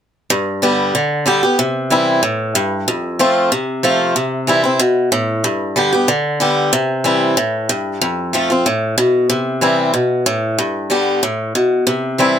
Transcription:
0.30 G2
0.62 D3 G3 B3 G4
0.95 D3
1.26 D3 G3 B3 G4
1.43 B3 G4
1.59 C3
1.90 E3 G3 C4 E4
2.23 A2
2.55 G2
2.88 F2
3.19 F3 A3 C4 F4
3.52 C3
3.83 F3 A3 C4 F4
4.16 C3
4.47 E3 G3 C4 E4
4.64 C4 E4
4.79 B2
5.12 A2
5.44 G2
5.76 D3 G3 B3 G4
5.93 B3 G4
6.08 D3
6.40 D3 G3 B3 G4
6.73 C3
7.04 E3 G3 C4 E4
7.37 A2
7.69 G2
8.01 F2
8.33 F3 A3 C4 F4
8.50 C4 F4
8.66 A2
8.98 B2
9.30 C3
9.61 E3 G3 C4 E4
9.94 B2
10.26 A2
10.59 G2
10.90 D3 G3 B3 G4
11.23 A2
11.55 B2
11.87 C3
12.18 E3 G3 C4 E4

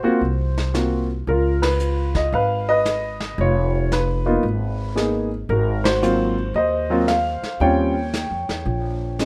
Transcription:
Already playing: C5
0.03 A#3 C4 F4 F#4, muted upright bass stroke
0.21 C2, brush sweep
0.58 snare
0.74 A#3 C4 F4 F#4, snare, hi-hat pedal
1.27 C#2 F4 A#4, brush sweep
1.62 B4, snare, ride
1.80 hi-hat pedal
2.15 D#5, kick, snare
2.32 G#1 B4 F5, brush sweep
2.69 B4 D#5
2.85 snare, hi-hat pedal
3.20 snare
3.38 F1 F4 C#5, brush sweep
3.92 F4 B4, snare, hi-hat pedal
4.26 A#3 B3 D#4 F4
4.43 G#1, brush sweep
4.95 A#3 B3 D#4 G#4, snare, hi-hat pedal
5.49 G#1 F#4 A#4, brush sweep
5.84 F#4 C5, snare, ride
6.02 F#3 A#3 C4 F4, hi-hat pedal
6.54 D#2 C5 D#5, brush sweep
6.90 F#3 A#3 C4 F4
7.08 F5, snare, hi-hat pedal
7.42 muted upright bass stroke, snare
7.60 D#2 G3 C4 C#4 F4 C#5 G5, brush sweep
8.14 snare, hi-hat pedal
8.31 F2
8.49 E2, snare
8.66 A#1, brush sweep
9.19 G3 C4 C#4 D#4, snare, hi-hat pedal

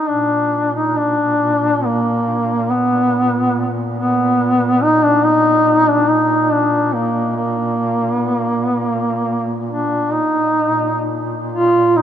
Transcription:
0.07 A#2 D4
0.75 D#4
0.97 D4
1.85 A#3
2.71 B3
3.97 B3
4.82 D#4
5.04 D4
5.25 D#4
5.90 D4
6.10 D#4
6.52 D4
6.94 A#3
7.36 A#3
8.18 B3
8.35 A#3
8.63 B3
8.80 A#3
9.66 D4
10.12 D#4
10.60 A#2
11.52 F4
11.96 D#4

